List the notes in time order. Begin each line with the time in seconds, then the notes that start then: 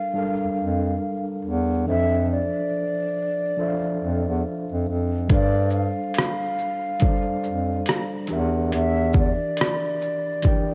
Already playing: G3 D4 A4 A#4 F5
0.14 G3 D4 A4 A#4
0.19 F5
0.43 F2
0.59 F2
1.45 E2
1.86 F2 E3 D4 A4 C5 E5
1.90 F3 E5
2.32 D5
3.57 F3 D4 A4 C5
3.61 E5
3.68 F5
4.02 F2
4.29 E2
4.72 F2
4.88 F2
5.28 G2 G3 D4 A4 C5 D5, kick, closed hi-hat
5.33 F5
5.70 F5, shaker
6.14 closed hi-hat
6.18 cross-stick
6.59 shaker
6.99 G3 D4 A4 C5, kick, closed hi-hat
7.04 D5
7.29 F2
7.44 F2, shaker
7.86 cross-stick, closed hi-hat
8.27 E2 E3 D4 G4, closed hi-hat, shaker
8.32 A#4 E5
8.72 E2 E5, closed hi-hat
9.13 kick, shaker
9.18 D5
9.57 closed hi-hat
9.61 cross-stick
10.01 shaker
10.42 E3 D4 G4 A#4, kick, closed hi-hat
10.47 G5